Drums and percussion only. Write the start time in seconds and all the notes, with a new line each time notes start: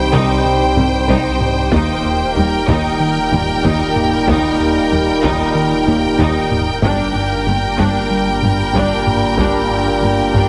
0.12 taiko
0.77 taiko low-mid
1.09 taiko
1.40 taiko low-mid
1.72 taiko
2.68 taiko
3.32 taiko low-mid
3.64 taiko
3.96 taiko low-mid
4.27 taiko
5.23 taiko
5.87 taiko low-mid
6.19 taiko
6.51 taiko low-mid
6.83 taiko
7.79 taiko
8.42 taiko low-mid
8.75 taiko
9.07 taiko low-mid
9.38 taiko
10.34 taiko